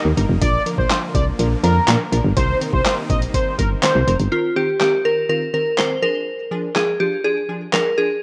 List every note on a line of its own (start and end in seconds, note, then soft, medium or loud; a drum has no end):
0.00 0.40 D#3 medium
0.00 0.11 G3 loud
0.00 0.40 G3 medium
0.00 2.33 A#3 medium
0.00 0.11 D#4 medium
0.00 0.11 A#4 loud
0.05 0.13 D#2 medium
0.17 0.25 G1 medium
0.17 0.35 G3 medium
0.17 0.35 D#4 medium
0.17 0.36 A#4 loud
0.17 closed hi-hat medium
0.29 0.38 F1 loud
0.41 0.58 A#1 loud
0.41 2.35 D3 medium
0.41 0.60 F3 loud
0.41 2.35 F3 medium
0.41 0.60 D4 medium
0.41 0.60 A#4 loud
0.41 0.63 D5 loud
0.41 kick loud
0.41 closed hi-hat loud
0.66 0.84 F3 medium
0.66 0.84 D4 medium
0.66 0.84 A#4 medium
0.66 closed hi-hat medium
0.78 0.86 A#1 medium
0.78 0.99 C5 medium
0.78 kick medium
0.90 1.09 F3 medium
0.90 1.09 D4 medium
0.90 1.09 C5 medium
0.90 snare medium
0.90 clap loud
0.90 closed hi-hat medium
1.15 1.31 C2 medium
1.15 1.33 F3 medium
1.15 1.33 D4 medium
1.15 1.33 A#4 medium
1.15 1.25 D5 medium
1.15 kick loud
1.15 closed hi-hat medium
1.39 1.56 A#1 medium
1.39 1.57 F3 medium
1.39 1.57 D4 medium
1.39 1.58 A#4 loud
1.39 closed hi-hat medium
1.63 1.80 F2 medium
1.63 1.82 F3 medium
1.63 1.82 D4 medium
1.63 1.98 A#4 medium
1.63 1.82 A#4 loud
1.63 closed hi-hat medium
1.88 1.96 A#2 loud
1.88 2.06 F3 medium
1.88 2.06 D4 medium
1.88 2.06 A#4 loud
1.88 snare loud
1.88 clap loud
1.88 closed hi-hat loud
2.12 2.20 A#1 loud
2.12 2.30 F3 medium
2.12 2.31 D4 medium
2.12 2.31 A#4 loud
2.12 closed hi-hat medium
2.25 2.33 G1 loud
2.36 2.53 C2 loud
2.36 4.30 C3 medium
2.36 2.55 D#3 loud
2.36 4.30 D#3 medium
2.36 4.30 G3 medium
2.36 4.30 A#3 medium
2.36 2.55 C4 medium
2.36 4.30 D#4 medium
2.36 2.55 A#4 loud
2.36 2.58 C5 loud
2.36 kick loud
2.36 closed hi-hat loud
2.61 2.79 D#3 medium
2.61 2.79 C4 medium
2.61 2.80 A#4 medium
2.61 closed hi-hat medium
2.73 2.81 C2 loud
2.73 2.94 C5 medium
2.73 kick medium
2.85 3.04 D#3 medium
2.85 3.04 C4 medium
2.85 3.04 A#4 medium
2.85 snare medium
2.85 clap loud
2.85 closed hi-hat medium
3.10 3.26 A#1 medium
3.10 3.28 D#3 medium
3.10 3.28 C4 medium
3.10 3.28 A#4 medium
3.10 3.20 D#5 medium
3.10 kick loud
3.10 closed hi-hat medium
3.22 closed hi-hat medium
3.34 3.52 D#3 medium
3.34 3.53 C4 medium
3.34 3.53 A#4 medium
3.34 3.55 C5 medium
3.34 kick medium
3.34 closed hi-hat loud
3.58 3.75 G1 medium
3.58 3.77 D#3 medium
3.58 3.77 C4 medium
3.58 3.69 A#4 medium
3.58 3.77 A#4 loud
3.58 kick medium
3.58 closed hi-hat medium
3.83 4.01 D#3 loud
3.83 4.01 C4 medium
3.83 4.01 A#4 loud
3.83 4.17 C5 medium
3.83 snare medium
3.83 clap loud
3.83 closed hi-hat loud
3.95 4.03 C2 medium
4.07 4.16 F1 medium
4.07 4.26 D#3 medium
4.07 4.26 C4 medium
4.07 4.26 A#4 medium
4.07 closed hi-hat medium
4.20 4.28 G1 medium
4.20 closed hi-hat medium
4.31 4.50 D#3 medium
4.31 4.50 C4 medium
4.31 4.55 F4 medium
4.31 4.50 A#4 loud
4.56 4.74 D#3 medium
4.56 4.74 C4 medium
4.56 4.79 G4 medium
4.56 4.75 G4 loud
4.80 4.99 D#3 medium
4.80 4.99 C4 medium
4.80 5.06 G4 medium
4.80 4.99 A#4 medium
4.80 snare medium
4.80 clap medium
5.05 5.23 D#3 medium
5.05 5.23 C4 medium
5.05 5.28 A#4 medium
5.05 5.23 A#4 medium
5.29 5.48 D#3 medium
5.29 5.48 C4 medium
5.29 5.48 F4 medium
5.29 5.40 A#4 medium
5.54 5.72 D#3 medium
5.54 5.72 C4 medium
5.54 5.76 A#4 medium
5.54 5.72 A#4 medium
5.78 5.96 D#3 medium
5.78 5.96 C4 medium
5.78 5.97 A#4 loud
5.78 6.03 C5 medium
5.78 snare medium
5.78 clap loud
6.02 6.41 F3 medium
6.02 6.42 D4 medium
6.02 6.42 G#4 medium
6.02 6.78 A#4 medium
6.51 6.69 F3 medium
6.51 6.70 D4 medium
6.51 6.70 G#4 loud
6.75 6.94 F3 medium
6.75 6.94 D4 medium
6.75 7.01 G#4 medium
6.75 6.94 G#4 medium
6.75 snare medium
6.75 clap medium
7.00 7.18 F3 medium
7.00 7.18 D4 medium
7.00 7.19 F4 medium
7.00 7.25 G4 medium
7.24 7.43 F3 medium
7.24 7.43 D4 medium
7.24 7.75 G#4 medium
7.24 7.43 G#4 medium
7.49 7.67 F3 medium
7.49 7.67 D4 medium
7.49 7.67 G#4 medium
7.73 7.91 F3 medium
7.73 7.92 D4 medium
7.73 7.92 G#4 loud
7.73 7.98 A#4 medium
7.73 snare medium
7.73 clap loud
7.97 8.16 F3 medium
7.97 8.16 D4 medium
7.97 8.23 G#4 medium
7.97 8.16 G#4 medium